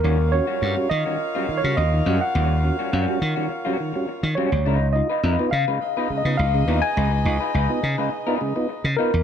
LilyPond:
<<
  \new Staff \with { instrumentName = "Tine electric piano" } { \time 4/4 \key dis \minor \tempo 4 = 104 ais'8 cis''4 dis''8~ \tuplet 3/2 { dis''4 cis''8 } dis''8. fis''16~ | fis''2~ fis''8. r8. cis''8~ | cis''8 dis''4 eis''8~ \tuplet 3/2 { eis''4 dis''8 } eis''8. gis''16~ | gis''2~ gis''8. r8. ais'8 | }
  \new Staff \with { instrumentName = "Horn section" } { \time 4/4 \key dis \minor <eis' ais' cis'' eis''>1~ | <eis' ais' cis'' eis''>2.~ <eis' ais' cis'' eis''>8 r8 | r2 <dis' gis' b' dis''>2~ | <dis' gis' b' dis''>2.~ <dis' gis' b' dis''>8 r8 | }
  \new Staff \with { instrumentName = "Clean electric guitar" } { \time 4/4 \key dis \minor <g cis' fis'>16 r8 <g cis' fis'>16 <g cis' fis'>16 r8 <g cis' fis'>16 r16 <g cis' fis'>16 r4 <g cis' fis'>16 r16 | <g cis' fis'>16 r8 <g cis' fis'>16 <g cis' fis'>16 r8 <g cis' fis'>16 r16 <g cis' fis'>16 r4 <g cis' fis'>16 r16 | <dis' eis' b'>16 r8 <dis' eis' b'>16 <dis' eis' b'>16 r8 <dis' eis' b'>16 r16 <dis' eis' b'>16 r4 <dis' eis' b'>16 r16 | <dis' eis' b'>16 r8 <dis' eis' b'>16 <dis' eis' b'>16 r8 <dis' eis' b'>16 r16 <dis' eis' b'>16 r4 <dis' eis' b'>16 r16 | }
  \new Staff \with { instrumentName = "Tonewheel organ" } { \time 4/4 \key dis \minor dis16 r16 <cis' fis'>16 r8 <g cis' fis'>16 r16 dis16 r16 <g cis' fis'>16 dis16 <g cis' fis'>16 <cis' fis'>16 dis16 <g cis' fis'>16 r16 | dis16 r16 <cis' fis'>16 r8 <g cis' fis'>16 r16 dis16 r16 <g cis' fis'>16 dis16 <g cis' fis'>16 r8 <g cis' fis'>16 r16 | <cis gis>16 r16 <dis' eis'>16 r8 <b dis' eis'>16 r16 <cis gis>16 r16 <b dis' eis'>16 <cis gis>16 <b dis' eis'>16 <dis' eis'>16 <cis gis>16 <b dis' eis'>16 r16 | <cis gis>16 r16 <dis' eis'>16 r8 <b dis' eis'>16 r16 <cis gis>16 r16 <b dis' eis'>16 <cis gis>16 <b dis' eis'>16 r8 <b dis' eis'>16 r16 | }
  \new Staff \with { instrumentName = "Slap bass" } { \clef bass \time 4/4 \key dis \minor dis,8. r16 g,16 r16 dis16 r4 cis16 dis,8 fis,16 r16 | dis,8. r16 fis,16 r16 dis16 r4. dis16 r16 d,16 | cis,8. r16 eis,16 r16 cis16 r4 cis16 cis,8 dis,16 r16 | cis,8 cis,16 r16 cis,16 r16 cis16 r4. cis16 r16 e,16 | }
>>